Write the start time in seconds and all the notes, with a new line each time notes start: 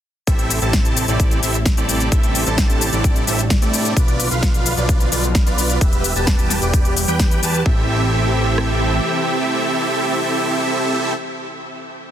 0.27 A1 C3 G3 A3 C4 E4 G4 A4 E5, kick, closed hi-hat, shaker
0.39 closed hi-hat
0.50 open hi-hat, shaker
0.62 A1 C4 E4 G4 A4 A5, closed hi-hat, shaker
0.73 kick, snare, closed hi-hat, shaker
0.85 closed hi-hat, shaker
0.97 open hi-hat, shaker
1.08 A1 C4 E4 G4 A4 D5, closed hi-hat, shaker
1.20 kick, closed hi-hat, shaker
1.31 closed hi-hat, shaker
1.43 A1 C4 E4 G4 A4 E5, open hi-hat, shaker
1.54 closed hi-hat, shaker
1.66 kick, snare, closed hi-hat, shaker
1.77 A1 C4 E4 G4 A4 D5, closed hi-hat, shaker
1.89 open hi-hat, shaker
2.00 closed hi-hat, shaker
2.12 A1 C4 D4 E4 G4 A4 E5, kick, closed hi-hat, shaker
2.23 closed hi-hat
2.35 open hi-hat, shaker
2.46 A1 C4 E4 G4 A4 A5, closed hi-hat, shaker
2.58 kick, snare, closed hi-hat, shaker
2.70 closed hi-hat, shaker
2.81 open hi-hat, shaker
2.93 A1 C4 E4 G4 A4 D5, closed hi-hat, shaker
3.04 kick, closed hi-hat, shaker
3.16 closed hi-hat, shaker
3.27 A1 C4 E4 G4 A4 E5, open hi-hat, shaker
3.39 closed hi-hat, shaker
3.50 kick, snare, closed hi-hat, shaker
3.62 A2 C4 E4 G4 A4 D5, closed hi-hat, shaker
3.74 open hi-hat, shaker
3.85 closed hi-hat, shaker
3.96 B1 D3 F3 B3 F4 B4 D5, kick, closed hi-hat, shaker
4.08 closed hi-hat
4.20 open hi-hat, shaker
4.31 B1 F4 B4 F5, closed hi-hat, shaker
4.43 kick, snare, closed hi-hat, shaker
4.54 closed hi-hat, shaker
4.66 open hi-hat, shaker
4.77 B1 F4 B4 D5, closed hi-hat, shaker
4.89 kick, closed hi-hat, shaker
5.00 closed hi-hat, shaker
5.12 B1 F4 B4 D5, open hi-hat, shaker
5.24 closed hi-hat, shaker
5.35 kick, snare, closed hi-hat, shaker
5.47 B1 F4 B4 D5, closed hi-hat, shaker
5.58 open hi-hat, shaker
5.70 closed hi-hat, shaker
5.81 E1 E3 G3 G4 B4 E5, kick, closed hi-hat, shaker
5.93 closed hi-hat
6.04 open hi-hat, shaker
6.16 E1 G4 B4 A5, closed hi-hat, shaker
6.27 kick, snare, closed hi-hat, shaker
6.39 closed hi-hat, shaker
6.50 snare, open hi-hat, shaker
6.62 E1 G4 B4 D5, closed hi-hat, shaker
6.73 kick, closed hi-hat, shaker
6.85 closed hi-hat, shaker
6.97 open hi-hat, shaker
7.08 E2 G4 B4 G5, closed hi-hat, shaker
7.19 kick, snare, closed hi-hat, shaker
7.31 closed hi-hat, shaker
7.43 E2 G4 B4 A5, open hi-hat, shaker
7.54 closed hi-hat, shaker
7.66 A1 E3 A3 C4 E4 G4 A4 E5, kick
8.58 cross-stick